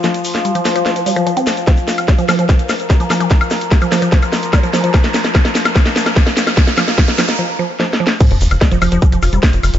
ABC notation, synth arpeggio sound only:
X:1
M:4/4
L:1/16
Q:1/4=147
K:Cphr
V:1 name="Synth arpeggio sound" clef=bass
F, z3 G, F, F, F, F, F, G, F, F, C z2 | F, z3 G, F, F, F, F, z3 G, F, F, F, | F, z3 G, F, F, F, F, z3 G, F, F, F, | F, z3 F, z3 F, z3 F, z3 |
F, z F, z F, z F, z F, z F, z F, z F, z | F, z3 G, F, F, F, F, F, F G, z4 |]